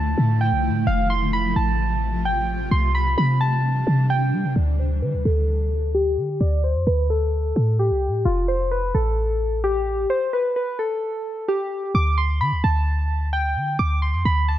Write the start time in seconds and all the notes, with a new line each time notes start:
Already playing: D2 D3 F3 A3 E4 A5
0.18 A2
0.41 G5
0.52 C2
0.70 A2
0.87 F1 C3 A3 F4 F5
1.10 C6
1.33 B5
1.56 A1 A5
2.25 G5
2.71 C2 E3 G3 D4 C6
2.95 B5
3.18 C3 B5
3.41 A5
3.87 C3
4.10 G5
4.33 G3
4.45 C3
4.56 D2 D5
4.79 C5
5.02 D3 B4
5.14 D2
5.25 D2 A4
5.95 G4
6.18 D3
6.41 D2 D5
6.64 C5
6.75 F2
6.87 D2 B4
7.10 A4
7.56 A2
7.79 G4
7.91 C2
8.08 A2
8.25 F1 F4
8.48 C5
8.71 B4
8.95 A1 A4
9.64 G4
10.10 C5
10.33 B4
10.56 B4
10.79 A4
11.48 G4
11.95 D2 D6
12.18 C6
12.41 D3 B5
12.52 D2
12.64 D2 A5
13.33 G5
13.56 D3
13.79 D2 D6
14.02 C6
14.14 F2
14.25 D2 B5
14.48 A5